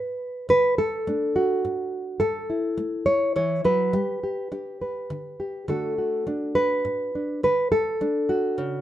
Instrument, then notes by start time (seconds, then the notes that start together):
nylon-string guitar
Already playing: A2 B4
0.49 D3 B4
0.78 A4
1.07 A3 D4
1.36 F#4
1.65 A2
2.20 A2 A4
2.50 E4
2.78 A3
3.06 C#5
3.36 E3 C#5
3.64 F#3 B4
3.93 G3 G4
4.23 G4
4.52 D4 G4
4.81 B4
5.10 D3
5.40 G4
5.68 D3 A3 D4 F#4 A4
5.98 F#4
6.27 A3 D4
6.55 B4
6.85 A2
7.15 D4
7.43 D3 B4
7.72 A4
8.01 A3 D4
8.29 F#4
8.58 C#3